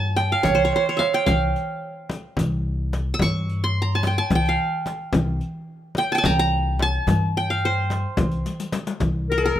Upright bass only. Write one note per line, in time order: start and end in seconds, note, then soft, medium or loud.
0.00 0.32 G2 medium
0.46 0.70 C2 medium
1.28 1.52 C2 medium
2.39 3.11 C2 medium
3.21 4.18 G2 loud
4.30 4.55 C2 medium
5.13 5.38 C2 loud
6.24 6.96 C2 loud
7.07 8.03 G2 loud
8.19 8.43 C2 medium
9.01 9.49 C2 loud
9.56 9.60 G2 medium